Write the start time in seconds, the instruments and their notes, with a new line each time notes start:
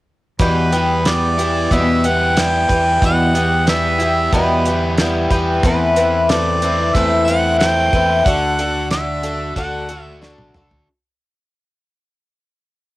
0.39 twelve-string acoustic guitar E2 B2 E3 G3 B3 G4, fingered electric bass E2, harmonica B4, kick, closed hi-hat
0.72 twelve-string acoustic guitar E3 G3 B3 G4, closed hi-hat
1.05 twelve-string acoustic guitar E3 G3 B3 G4, harmonica D5, snare, closed hi-hat
1.38 twelve-string acoustic guitar E3 G3 B3 G4, overdriven electric guitar E4, closed hi-hat
1.71 fingered electric bass E2, twelve-string acoustic guitar E2 B2 E3 G3 B3 G4, harmonica E5, kick, closed hi-hat
2.04 twelve-string acoustic guitar E3 G3 B3 G4, harmonica F#5, closed hi-hat
2.36 twelve-string acoustic guitar E3 G3 B3 G4, overdriven electric guitar E4, harmonica G5, snare, closed hi-hat
2.69 fingered electric bass E2, twelve-string acoustic guitar G3 B3 G4, overdriven electric guitar B4, kick, closed hi-hat
2.73 twelve-string acoustic guitar E3
3.02 fingered electric bass E2, twelve-string acoustic guitar E2 B2 E3 G3 B3 G4, harmonica F#5, kick, closed hi-hat
3.35 twelve-string acoustic guitar E3 G3 B3 G4, closed hi-hat
3.67 twelve-string acoustic guitar E3 G3 B3 G4, harmonica E5, snare, closed hi-hat
3.99 twelve-string acoustic guitar E3 G3 B3 G4, overdriven electric guitar E4, closed hi-hat
4.33 fingered electric bass E2, twelve-string acoustic guitar E2 B2 E3 G3 B3 G4, harmonica B4, kick, closed hi-hat
4.66 twelve-string acoustic guitar E3 G3 B3 G4, closed hi-hat
4.98 twelve-string acoustic guitar E3 G3 B3 G4, overdriven electric guitar E4, snare, closed hi-hat
5.30 fingered electric bass E2, twelve-string acoustic guitar E3 G3 B3 G4, overdriven electric guitar B4, kick, closed hi-hat
5.63 twelve-string acoustic guitar E2 E3 A3 C4 E4 B4, fingered electric bass E2, harmonica B4, kick, closed hi-hat
5.96 overdriven electric guitar E3, twelve-string acoustic guitar A3 C4 E4 B4, closed hi-hat
6.29 twelve-string acoustic guitar A3 C4 E4 B4, harmonica D5, snare, closed hi-hat
6.62 twelve-string acoustic guitar A3 C4 E4 B4, closed hi-hat
6.95 fingered electric bass E2, twelve-string acoustic guitar E2 E3 A3 C4 E4 B4, harmonica E5, kick, closed hi-hat
7.26 twelve-string acoustic guitar C4 E4 B4, harmonica F#5, closed hi-hat
7.30 twelve-string acoustic guitar A3
7.59 twelve-string acoustic guitar A3 C4 E4 B4, harmonica G5, snare, closed hi-hat
7.93 fingered electric bass E2, twelve-string acoustic guitar A3 C4 E4 B4, kick, closed hi-hat
8.25 fingered electric bass D2, twelve-string acoustic guitar D3 D4 F#4 A4, harmonica F#5, kick, closed hi-hat
8.59 twelve-string acoustic guitar D4 F#4 A4, closed hi-hat
8.91 twelve-string acoustic guitar D3 D4 F#4 A4, harmonica E5, snare, closed hi-hat
9.23 twelve-string acoustic guitar D4 F#4 A4, closed hi-hat
9.56 fingered electric bass D2, twelve-string acoustic guitar D3 D4 F#4 A4, harmonica F#5, kick, closed hi-hat
9.89 twelve-string acoustic guitar D4 F#4 A4, closed hi-hat
10.03 harmonica E5
10.22 twelve-string acoustic guitar D3 D4 F#4 A4, snare
10.38 fingered electric bass B1, high tom
10.55 fingered electric bass C2, twelve-string acoustic guitar D4 F#4 A4, mid tom
10.71 fingered electric bass D2, floor tom